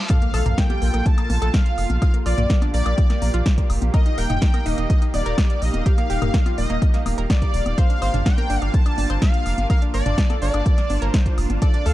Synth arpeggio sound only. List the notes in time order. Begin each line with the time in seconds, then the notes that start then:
0.10 A4
0.22 A#3
0.34 A4
0.46 A#3
0.58 A#3
0.70 G4
0.82 A#3
0.94 A#3
1.18 A#3
1.30 A#3
1.42 A4
2.02 F4
2.14 A#3
2.26 F4
2.38 A#3
2.50 A#3
2.62 D4
2.74 A#3
2.86 A#3
3.10 A#3
3.22 A#3
3.34 F4
3.94 A#4
4.06 D#4
4.18 A#4
4.30 D#4
4.42 D#4
4.54 A#4
4.66 D#4
4.78 D#4
5.02 D#4
5.14 D#4
5.26 A#4
5.86 G4
5.98 A#3
6.10 G4
6.22 A#3
6.34 A#3
6.46 F4
6.58 A#3
6.70 A#3
6.94 A#3
7.06 A#3
7.18 A#4
7.78 C5
7.90 D4
8.02 C5
8.14 D4
8.26 D4
8.38 A#4
8.50 D4
8.62 D4
8.86 D4
8.98 D4
9.10 C5
9.70 A#4
9.82 D4
9.94 A#4
10.06 D4
10.18 D4
10.30 A4
10.42 D4
10.54 D4
10.78 D4
10.90 D4
11.02 A#4
11.62 A4
11.74 D4
11.86 A4